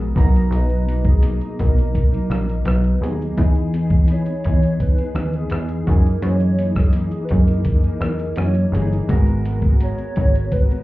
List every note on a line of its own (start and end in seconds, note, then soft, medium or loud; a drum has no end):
0.00 0.16 G#3 medium
0.00 0.16 B3 medium
0.00 0.16 F#4 medium
0.00 0.19 G#4 medium
0.00 0.16 A#4 medium
0.15 0.45 B1 medium
0.15 0.33 B2 medium
0.15 1.49 F#3 medium
0.15 0.34 F#3 medium
0.15 0.33 A#3 medium
0.15 1.49 B3 medium
0.15 1.49 D#4 medium
0.15 0.31 D#4 medium
0.15 0.55 A#4 medium
0.15 1.50 A#5 medium
0.15 kick loud
0.15 closed hi-hat soft
0.15 shaker soft
0.33 0.50 F#3 soft
0.33 0.52 A#3 soft
0.33 0.51 D#4 soft
0.33 shaker medium
0.50 1.37 B1 loud
0.50 0.85 B2 medium
0.50 0.86 F#3 medium
0.50 0.88 D#4 medium
0.50 1.08 B4 loud
0.50 closed hi-hat medium
0.50 shaker medium
0.69 shaker soft
0.86 1.22 B2 medium
0.86 1.22 F#3 medium
0.86 1.23 A#3 medium
0.86 1.23 D#4 medium
0.86 closed hi-hat soft
0.86 shaker soft
1.05 1.61 G#4 medium
1.05 kick medium
1.05 shaker soft
1.23 1.41 B2 medium
1.23 1.41 F#3 medium
1.23 1.41 A#3 medium
1.23 1.40 D#4 medium
1.23 closed hi-hat medium
1.23 shaker medium
1.41 1.57 F#3 soft
1.41 1.58 A#3 soft
1.41 1.59 D#4 soft
1.41 shaker soft
1.58 2.17 B1 loud
1.58 1.76 B2 medium
1.58 1.77 F#3 medium
1.58 1.76 A#3 medium
1.58 1.75 D#4 medium
1.58 1.95 A#4 medium
1.58 kick medium
1.58 closed hi-hat medium
1.58 shaker soft
1.76 2.13 F#3 soft
1.76 2.12 A#3 soft
1.76 2.11 D#4 medium
1.76 shaker medium
1.95 2.63 A#4 loud
1.95 kick medium
1.95 closed hi-hat medium
1.95 shaker medium
2.12 2.30 F#3 soft
2.12 2.30 A#3 medium
2.12 2.30 D#4 medium
2.12 shaker soft
2.30 2.59 A#1 loud
2.30 2.48 B2 medium
2.30 2.49 F#3 medium
2.30 2.48 A#3 medium
2.30 2.46 D#4 medium
2.30 cross-stick medium
2.30 closed hi-hat medium
2.30 shaker soft
2.48 2.65 F#3 soft
2.48 2.66 A#3 soft
2.48 2.66 D#4 soft
2.48 shaker medium
2.65 2.94 B1 loud
2.65 3.00 B2 medium
2.65 3.01 F#3 medium
2.65 3.02 D#4 medium
2.65 3.16 B4 medium
2.65 cross-stick medium
2.65 closed hi-hat medium
2.65 shaker medium
2.84 shaker medium
3.00 3.30 D#2 medium
3.00 3.19 B2 medium
3.00 3.34 F#3 medium
3.00 3.20 F#3 medium
3.00 3.20 A#3 medium
3.00 3.35 B3 medium
3.00 3.35 D#4 medium
3.00 3.19 D#4 medium
3.00 3.36 G#4 medium
3.00 closed hi-hat soft
3.00 shaker soft
3.20 3.37 F#3 soft
3.20 3.38 A#3 soft
3.20 3.37 D#4 soft
3.20 shaker medium
3.36 4.23 E2 loud
3.36 4.70 E3 medium
3.36 3.72 E3 medium
3.36 4.71 B3 medium
3.36 3.72 B3 medium
3.36 4.71 D#4 medium
3.36 3.74 D#4 medium
3.36 4.71 G#4 medium
3.36 3.74 G#4 loud
3.36 kick loud
3.36 closed hi-hat medium
3.36 shaker medium
3.55 shaker soft
3.73 4.08 E3 medium
3.73 4.08 B3 medium
3.73 4.09 D#4 medium
3.73 4.10 G#4 medium
3.73 closed hi-hat soft
3.73 shaker soft
3.90 kick medium
3.90 shaker soft
4.08 4.27 E3 medium
4.08 4.27 B3 medium
4.08 4.27 D#4 medium
4.08 4.25 G#4 medium
4.08 4.83 C#5 loud
4.08 closed hi-hat medium
4.08 shaker medium
4.26 4.44 B3 soft
4.26 4.45 D#4 soft
4.26 4.45 G#4 medium
4.26 shaker soft
4.44 5.02 E2 loud
4.44 4.62 E3 medium
4.44 4.63 B3 medium
4.44 4.62 D#4 medium
4.44 4.62 G#4 medium
4.44 kick medium
4.44 closed hi-hat medium
4.44 shaker soft
4.63 4.99 B3 soft
4.63 4.99 D#4 soft
4.63 4.97 G#4 soft
4.63 shaker medium
4.80 5.37 B4 loud
4.80 kick medium
4.80 closed hi-hat medium
4.80 shaker medium
4.98 5.15 B3 soft
4.98 5.16 D#4 soft
4.98 5.16 G#4 medium
4.98 shaker soft
5.15 5.44 D#2 medium
5.15 5.34 E3 medium
5.15 5.34 B3 medium
5.15 5.34 D#4 soft
5.15 5.33 G#4 medium
5.15 cross-stick medium
5.15 closed hi-hat medium
5.15 shaker soft
5.33 5.51 B3 soft
5.33 5.52 D#4 soft
5.33 5.52 G#4 soft
5.33 5.90 G#4 medium
5.33 shaker soft
5.50 5.80 E2 medium
5.50 5.87 E3 medium
5.50 5.88 B3 medium
5.50 5.88 D#4 medium
5.50 5.88 G#4 medium
5.50 cross-stick medium
5.50 closed hi-hat medium
5.50 shaker medium
5.68 shaker medium
5.86 6.16 F#2 medium
5.86 6.22 F#2 medium
5.86 7.20 E3 medium
5.86 6.22 E3 medium
5.86 7.21 A#3 medium
5.86 6.23 A#3 medium
5.86 7.21 D#4 medium
5.86 6.23 D#4 medium
5.86 7.22 G#4 medium
5.86 6.27 A#4 medium
5.86 kick loud
5.86 closed hi-hat soft
5.86 shaker soft
6.06 shaker medium
6.22 7.08 F#2 loud
6.22 6.57 F#2 medium
6.22 6.58 E3 medium
6.22 6.59 A#3 medium
6.22 6.60 D#4 medium
6.22 6.80 C#5 loud
6.22 closed hi-hat medium
6.22 shaker medium
6.40 shaker soft
6.58 6.93 F#2 medium
6.58 6.94 E3 medium
6.58 6.94 A#3 medium
6.58 6.95 D#4 medium
6.58 closed hi-hat soft
6.58 shaker soft
6.76 7.26 G#4 medium
6.76 kick medium
6.76 cross-stick medium
6.76 shaker soft
6.93 7.12 F#2 medium
6.93 7.13 E3 medium
6.93 7.13 A#3 medium
6.93 7.12 D#4 medium
6.93 closed hi-hat medium
6.93 shaker medium
7.11 7.31 A#3 soft
7.11 7.31 D#4 medium
7.11 shaker medium
7.16 7.31 E3 soft
7.25 7.34 B4 medium
7.29 7.88 F#2 loud
7.29 7.49 F#2 soft
7.29 7.49 E3 medium
7.29 7.49 A#3 medium
7.29 7.66 A#4 medium
7.29 kick medium
7.29 closed hi-hat soft
7.29 shaker soft
7.33 7.47 D#4 medium
7.47 7.85 E3 soft
7.47 7.84 A#3 soft
7.47 7.83 D#4 soft
7.47 shaker medium
7.65 8.40 A#4 medium
7.65 kick medium
7.65 closed hi-hat medium
7.65 shaker medium
7.83 8.01 E3 soft
7.83 8.02 A#3 soft
7.83 8.02 D#4 medium
7.83 shaker soft
8.01 8.30 E2 medium
8.01 8.19 F#2 soft
8.01 8.20 E3 medium
8.01 8.20 A#3 medium
8.01 8.18 D#4 medium
8.01 cross-stick medium
8.01 closed hi-hat soft
8.01 shaker medium
8.19 8.38 E3 soft
8.19 8.38 A#3 soft
8.19 8.37 D#4 medium
8.19 shaker soft
8.36 8.66 F#2 medium
8.36 8.71 F#2 medium
8.36 8.72 E3 medium
8.36 8.73 A#3 medium
8.36 8.74 D#4 medium
8.36 8.92 C#5 loud
8.36 cross-stick medium
8.36 closed hi-hat medium
8.36 shaker medium
8.54 shaker medium
8.72 9.01 G1 medium
8.72 8.91 F#2 medium
8.72 9.06 E3 medium
8.72 8.91 E3 medium
8.72 9.06 A#3 medium
8.72 8.91 A#3 medium
8.72 9.07 D#4 medium
8.72 8.90 D#4 medium
8.72 9.07 G#4 medium
8.72 closed hi-hat soft
8.72 shaker soft
8.91 9.09 E3 soft
8.91 9.09 A#3 soft
8.91 9.09 D#4 soft
8.91 shaker medium
9.08 9.94 G#1 loud
9.08 10.42 G#3 medium
9.08 9.44 G#3 medium
9.08 10.42 B3 medium
9.08 9.45 B3 medium
9.08 10.43 F#4 medium
9.08 9.45 F#4 medium
9.08 10.43 A#4 medium
9.08 9.46 A#4 medium
9.08 kick loud
9.08 closed hi-hat medium
9.08 shaker medium
9.26 shaker soft
9.46 9.79 G#3 medium
9.46 9.79 B3 medium
9.46 9.80 F#4 medium
9.46 9.81 A#4 medium
9.46 closed hi-hat soft
9.46 shaker soft
9.62 kick medium
9.62 shaker soft
9.80 9.98 G#3 medium
9.80 9.98 B3 medium
9.80 9.97 F#4 medium
9.80 9.96 A#4 medium
9.80 10.54 C#5 loud
9.80 closed hi-hat medium
9.80 shaker medium
9.97 10.15 B3 soft
9.97 10.16 F#4 soft
9.97 10.16 A#4 medium
9.97 shaker soft
10.15 10.74 G#1 medium
10.15 10.34 G#3 medium
10.15 10.34 B3 medium
10.15 10.32 F#4 medium
10.15 10.31 A#4 medium
10.15 kick medium
10.15 closed hi-hat soft
10.15 shaker medium
10.32 10.70 B3 soft
10.32 10.69 F#4 soft
10.32 10.68 A#4 soft
10.32 shaker medium
10.52 10.83 B4 loud
10.52 kick medium
10.52 closed hi-hat medium
10.52 shaker medium
10.69 10.83 B3 soft
10.69 10.83 F#4 soft
10.69 10.83 A#4 medium
10.69 shaker soft